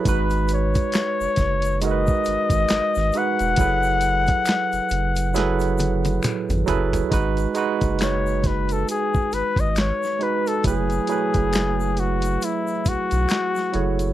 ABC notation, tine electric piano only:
X:1
M:4/4
L:1/8
Q:"Swing 16ths" 1/4=68
K:G#phr
V:1 name="Tine electric piano"
[G,DFB]4 [G,DF^AB]3 [G,DFB] | [F,EGAB]4 [F,EGAB]3 [F,EGAB] | [G,DFB] [G,DFB]4 z2 [G,DFB] | [F,A,EGB] [F,A,EGB]4 z2 [F,EGAc] |]